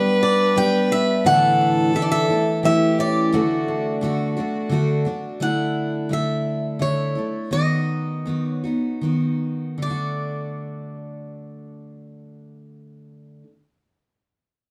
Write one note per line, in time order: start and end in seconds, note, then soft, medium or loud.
0.00 0.55 G3 medium
0.00 0.56 B3 medium
0.00 1.26 B3 medium
0.00 0.22 D4 medium
0.00 0.57 D4 medium
0.00 0.56 G4 medium
0.00 0.58 G4 medium
0.00 1.28 B4 loud
0.00 0.22 F#5 medium
0.23 0.90 D4 medium
0.23 0.57 D5 medium
0.56 1.25 G3 medium
0.56 1.26 B3 medium
0.56 1.26 D4 medium
0.56 1.33 G4 medium
0.56 1.27 G4 medium
0.56 0.89 G5 medium
0.91 1.33 D4 medium
0.91 1.24 E5 medium
1.25 1.94 A2 medium
1.25 1.92 D3 medium
1.25 2.63 E3 medium
1.25 1.95 A3 medium
1.25 1.95 D4 medium
1.25 1.96 E4 medium
1.25 2.63 A4 loud
1.25 1.95 F#5 medium
1.61 2.29 D4 medium
1.93 2.29 D3 medium
1.93 2.30 A3 medium
1.93 2.29 D4 medium
1.93 2.27 E4 medium
1.93 2.12 G4 medium
1.93 2.03 E5 medium
2.02 2.09 D5 medium
2.12 2.71 A4 medium
2.12 2.64 E5 medium
2.28 2.63 A3 soft
2.28 2.71 D4 medium
2.28 2.65 D4 soft
2.28 2.63 E4 medium
2.63 3.32 E3 medium
2.63 3.40 E3 medium
2.63 3.33 A3 medium
2.63 3.34 E4 medium
2.63 3.35 G4 loud
2.63 3.00 E5 medium
2.99 3.40 C#4 medium
2.99 5.03 D5 medium
3.32 4.00 D3 medium
3.32 4.01 A3 medium
3.32 5.41 A3 medium
3.32 4.02 D4 medium
3.32 4.03 F#4 medium
3.68 4.36 D4 medium
4.01 4.36 D3 medium
4.01 4.37 A3 medium
4.01 4.37 D4 medium
4.01 4.71 F#4 medium
4.01 5.03 F#4 medium
4.01 4.35 F#4 medium
4.37 4.70 A3 soft
4.37 5.05 D4 medium
4.37 4.71 D4 soft
4.37 4.71 F#4 medium
4.69 5.05 D3 medium
4.69 5.06 A3 medium
4.69 5.06 D4 medium
4.69 5.48 F#4 medium
4.69 5.04 F#4 medium
5.05 5.40 A3 soft
5.05 5.48 D4 medium
5.05 5.41 D4 medium
5.05 5.40 F#4 soft
5.40 6.08 D3 medium
5.40 6.09 A3 medium
5.40 6.10 D4 medium
5.40 6.11 E4 medium
5.40 6.13 F#5 medium
6.09 6.78 D3 medium
6.09 6.79 A3 medium
6.09 6.80 D4 medium
6.09 6.82 E4 medium
6.09 6.81 E5 medium
6.79 7.16 D3 medium
6.79 7.16 A3 medium
6.79 7.16 D4 medium
6.79 7.14 E4 medium
6.79 7.52 C#5 medium
7.15 7.52 A3 soft
7.15 7.52 D4 soft
7.15 7.52 E4 soft
7.51 8.24 D#3 medium
7.51 8.26 B3 medium
7.51 8.26 D#4 medium
7.51 8.27 F#4 medium
7.51 8.51 D#5 medium
8.26 8.64 D#3 soft
8.26 8.64 B3 medium
8.26 8.64 D#4 soft
8.26 8.62 F#4 soft
8.51 8.98 C#5 medium
8.64 9.02 B3 soft
8.64 9.03 D#4 soft
8.64 9.02 F#4 soft
9.01 9.77 D#3 medium
9.01 9.82 B3 soft
9.01 9.82 D#4 soft
9.01 9.82 F#4 soft
9.78 13.42 D3 medium
9.82 13.47 A3 medium
9.82 13.51 D4 medium
9.82 13.43 D5 medium
9.90 13.54 F#4 medium